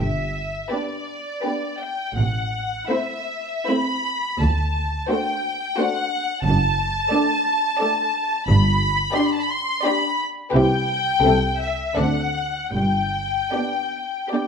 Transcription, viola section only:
0.73 1.26 B3 soft
0.73 1.26 D4 soft
1.45 1.99 B3 soft
1.45 1.98 D4 soft
2.90 3.49 A3 soft
2.90 3.49 C4 soft
3.68 4.23 A3 soft
3.68 4.23 C4 soft
5.11 5.62 A3 soft
5.11 5.61 D4 soft
5.79 6.29 A3 soft
5.79 6.28 D4 soft
7.12 7.64 A3 soft
7.12 7.64 D4 soft
7.80 8.32 A3 soft
7.80 8.32 D4 soft
9.16 9.67 D4 soft
9.85 10.37 D4 soft
10.54 11.07 C4 soft
10.54 11.07 E4 soft
11.24 11.78 C4 soft
11.24 11.78 E4 soft
11.97 12.55 C4 soft
11.97 12.55 D4 soft
13.54 14.13 B3 soft
13.54 14.13 D4 soft
14.32 14.47 B3 soft
14.32 14.47 D4 soft

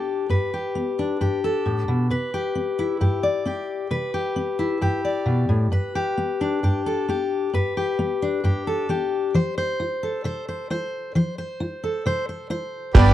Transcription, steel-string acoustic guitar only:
0.00 0.26 B3 soft
0.00 0.28 D4 soft
0.00 0.53 G4 soft
0.00 0.28 A4 soft
0.29 0.70 G2 medium
0.29 1.44 B4 soft
0.54 1.21 G4 soft
0.75 1.16 B3 soft
0.99 2.08 D4 soft
1.21 1.61 G2 soft
1.21 2.33 G4 soft
1.44 2.08 A4 soft
1.66 1.88 A2 soft
1.88 2.11 B2 soft
2.10 2.51 C3 medium
2.10 3.23 B4 soft
2.34 3.01 G4 soft
2.55 2.96 C4 soft
2.79 3.89 E4 soft
3.01 3.41 G2 medium
3.01 3.46 G4 soft
3.23 3.88 D5 soft
3.45 3.86 C4 soft
3.45 4.14 G4 soft
3.91 4.32 C3 medium
3.91 5.04 B4 medium
4.14 4.82 G4 soft
4.36 4.77 C4 soft
4.59 5.69 E4 soft
4.81 5.22 G2 soft
4.81 5.95 G4 soft
5.05 5.70 D5 soft
5.26 5.48 B2 soft
5.49 5.71 A2 soft
5.72 6.13 G2 medium
5.72 6.85 B4 soft
5.95 6.63 G4 soft
6.17 6.58 B3 soft
6.41 7.51 D4 soft
6.63 7.04 G2 soft
6.63 7.09 G4 soft
6.86 7.51 A4 soft
7.09 7.49 B3 soft
7.09 7.77 G4 soft
7.53 7.94 G2 medium
7.53 8.67 B4 soft
7.77 8.44 G4 soft
7.99 8.39 B3 soft
8.22 9.32 D4 soft
8.44 8.84 G2 medium
8.44 8.89 G4 soft
8.67 9.32 A4 soft
8.89 9.30 B3 medium
8.89 9.37 G4 soft
9.34 9.75 F3 medium
9.34 9.57 C5 soft
9.58 10.25 C5 medium
9.80 10.20 F4 soft
10.03 11.13 A4 soft
10.24 10.65 C3 medium
10.24 10.47 C5 medium
10.48 10.70 C5 soft
10.70 11.11 F4 soft
10.70 11.13 C5 medium
11.15 11.56 F3 medium
11.15 11.37 C5 medium
11.38 12.05 C5 medium
11.60 12.01 F4 soft
11.84 12.93 A4 soft
12.06 12.46 C3 medium
12.06 12.28 C5 medium
12.29 12.49 C5 soft
12.50 12.91 F4 soft
12.50 12.93 C5 medium

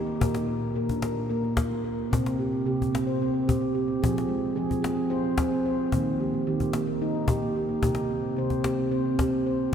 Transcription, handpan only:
0.07 0.20 A#3 medium
0.20 0.63 A#2 medium
0.20 0.47 A#4 medium
0.48 0.75 A#3 medium
0.75 1.17 A#2 medium
0.75 0.89 A#4 medium
0.90 1.03 D4 medium
1.04 1.16 A#4 medium
1.17 1.29 A#3 medium
1.29 1.43 A#3 medium
1.29 1.43 A#4 medium
1.44 1.57 A#3 medium
1.58 1.71 F4 medium
1.71 1.84 A#3 medium
1.84 2.11 A#4 medium
2.11 2.54 C3 medium
2.11 2.38 C4 medium
2.39 2.52 G4 medium
2.52 2.66 C4 medium
2.66 3.08 C3 medium
2.66 2.93 G4 medium
2.93 3.06 C4 medium
3.07 3.34 C5 medium
3.22 3.32 C4 medium
3.34 3.47 C4 medium
3.48 3.61 G4 medium
3.61 3.75 C4 medium
3.75 3.88 G4 medium
3.88 4.02 C4 medium
4.02 4.45 F3 medium
4.02 4.29 G#4 medium
4.29 4.56 G#3 medium
4.56 4.99 F3 medium
4.56 4.70 G#4 medium
4.69 4.83 C4 medium
4.82 4.97 G#4 medium
4.97 5.11 C4 medium
5.10 5.74 F4 medium
5.10 5.24 C5 medium
5.24 5.38 C4 medium
5.37 5.51 G#4 medium
5.52 5.65 C4 medium
5.66 5.93 C5 medium
5.92 6.35 D#3 medium
5.92 6.20 A#3 medium
6.20 6.34 G4 medium
6.34 6.47 A#3 medium
6.47 6.89 D#3 medium
6.47 6.74 G4 medium
6.73 6.87 A#3 medium
6.87 7.15 A#4 medium
7.02 7.65 D#4 medium
7.15 7.29 A#3 medium
7.28 7.42 G4 medium
7.42 7.56 A#3 medium
7.56 7.69 G4 medium
7.69 7.83 A#3 medium
7.83 8.25 C3 medium
7.83 8.10 G4 medium
8.11 8.38 C4 medium
8.37 8.79 C3 medium
8.37 8.51 C5 medium
8.51 8.65 C4 medium
8.65 8.78 G4 medium
8.79 8.91 C4 medium
8.91 9.04 C4 medium
8.91 9.05 C5 medium
9.06 9.19 C4 medium
9.20 9.33 G4 medium
9.33 9.47 C4 medium
9.46 9.74 C5 medium

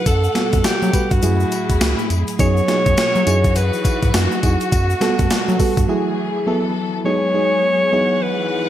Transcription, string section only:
0.00 1.19 F#5 medium
0.06 1.22 B2 medium
0.06 1.21 A3 medium
1.22 2.38 A2 medium
1.22 2.38 E4 medium
1.22 4.69 G#4 medium
2.39 3.26 B2 medium
2.39 5.85 F#4 medium
3.27 4.71 E3 medium
4.72 5.88 B2 medium
4.72 5.88 A3 medium
5.89 7.04 E3 medium
5.89 6.46 A3 medium
5.89 6.46 G#4 medium
6.47 7.04 B3 medium
6.47 7.05 A4 medium
7.05 7.92 F#3 medium
7.05 7.92 B3 medium
7.05 7.92 G#4 medium
7.92 8.69 E3 medium
7.92 8.69 G#3 medium
7.92 8.69 F#5 medium

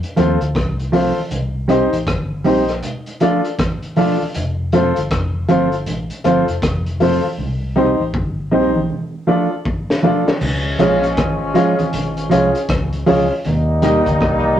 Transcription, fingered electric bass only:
0.18 0.38 D#2 medium
0.41 0.54 D2 medium
1.32 1.86 C2 medium
1.93 2.06 A1 medium
2.07 2.41 G1 medium
2.46 2.79 A#1 medium
4.36 4.90 F1 medium
4.97 5.10 G1 medium
5.11 5.45 F1 medium
5.50 5.83 G1 medium
5.87 6.08 A1 loud
6.25 6.46 G1 loud
6.49 6.61 F1 medium
6.63 7.17 F1 medium
7.39 7.93 C2 medium
8.00 8.13 A1 medium
8.14 8.48 G1 medium
8.52 8.86 A#1 medium
10.42 10.76 C#2 medium
10.80 11.14 A#1 medium
11.18 11.51 G#1 medium
11.94 12.28 G#1 medium
12.32 12.53 C2 loud
12.69 13.03 C#2 loud
13.08 13.29 C#2 loud
13.46 14.00 D#2 loud
14.07 14.19 D2 loud
14.21 14.55 C2 medium

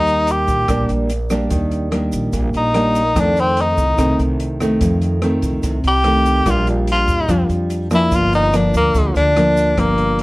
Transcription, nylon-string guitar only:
0.00 0.67 D#3 medium
0.00 0.66 G3 medium
0.00 0.66 A#3 medium
0.69 1.49 A#2 medium
0.69 1.10 G3 medium
0.69 1.10 A#3 medium
0.69 1.10 D4 medium
1.30 1.89 G3 medium
1.30 1.89 A#3 medium
1.30 1.89 D4 medium
1.51 2.31 D#3 medium
1.91 2.71 G3 soft
1.91 2.71 A#3 medium
1.91 2.72 D4 medium
2.33 3.14 A#2 medium
2.75 3.01 G3 medium
2.75 3.01 A#3 soft
2.75 3.02 D4 medium
3.15 3.96 F2 medium
3.15 3.95 D#3 medium
3.15 3.95 A3 medium
3.15 3.96 C4 medium
3.98 4.79 C3 medium
3.98 4.57 D#3 medium
3.98 4.57 A3 soft
3.98 4.57 C4 medium
4.61 5.19 D#3 medium
4.61 5.20 A3 medium
4.61 5.20 C4 medium
4.81 5.62 F2 medium
5.22 5.78 D#3 medium
5.22 5.78 A3 medium
5.22 5.78 C4 medium
5.64 6.44 C3 medium
6.04 6.43 D#3 medium
6.04 6.43 A3 medium
6.04 6.43 C4 medium
6.46 7.27 A#2 medium
6.46 7.26 G3 medium
6.46 7.26 D4 medium
6.46 7.26 F4 medium
7.29 7.90 F3 medium
7.29 7.88 G3 medium
7.29 7.88 D4 medium
7.29 7.88 F4 medium
7.91 8.50 F3 medium
7.91 8.50 A#3 medium
7.91 8.50 D4 medium
8.13 8.93 G2 medium
8.53 9.33 F3 medium
8.53 9.33 A#3 medium
8.53 9.33 D4 medium
8.95 9.76 D3 medium
9.36 9.74 F3 medium
9.36 9.74 A#3 medium
9.36 9.75 D4 medium
9.78 10.23 G2 medium
9.78 10.23 F3 medium
9.78 10.23 A#3 medium
9.78 10.23 D4 medium

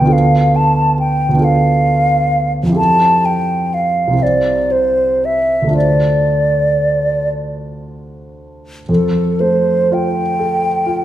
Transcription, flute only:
0.00 0.14 G5 medium
0.13 0.57 F5 medium
0.56 0.99 A5 soft
0.99 1.46 G5 soft
1.44 2.53 F5 medium
2.77 3.27 A5 medium
3.25 3.76 G5 soft
3.74 4.24 F5 soft
4.23 4.73 D5 soft
4.72 5.27 C5 soft
5.25 5.76 E5 soft
5.77 7.29 D5 soft
8.89 9.42 A4 soft
9.40 9.95 C5 soft
9.94 11.05 G5 soft

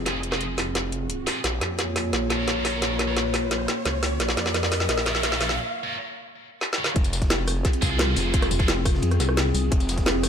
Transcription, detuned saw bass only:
0.00 0.74 F1 medium
0.75 1.25 F1 loud
1.44 1.60 A#1 loud
1.61 2.12 F2 loud
2.13 2.63 A#1 loud
2.65 3.50 A#1 loud
3.51 3.67 A#1 loud
3.85 4.19 C#2 medium
4.20 4.36 A#1 loud
4.37 4.88 F2 loud
4.89 5.39 A#1 loud
5.41 5.58 A#1 loud
6.96 7.29 F1 loud
7.30 7.63 F1 loud
8.17 8.50 F1 medium
9.72 10.05 F1 loud
10.06 10.29 F1 loud

